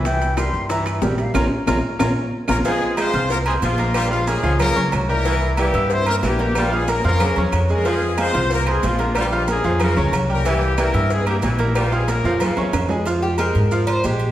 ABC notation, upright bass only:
X:1
M:4/4
L:1/8
Q:1/4=184
K:Fm
V:1 name="Upright bass" clef=bass
C,,3 G,,3 B,,,2 | B,,, z B,,, z B,,, z2 B,,, | z3 C,,3 B,,,2- | B,,,3 D,,2 D,, C,,2- |
C,,3 G,,3 B,,,2- | B,,,3 F,,2 =E,, F,,2- | F,,3 C,,3 B,,,2- | B,,,3 F,,2 D,, C,,2- |
C,,3 G,,3 B,,,2- | B,,,3 F,,2 =E,, F,,2- | F,,3 A,,3 B,,,2 |]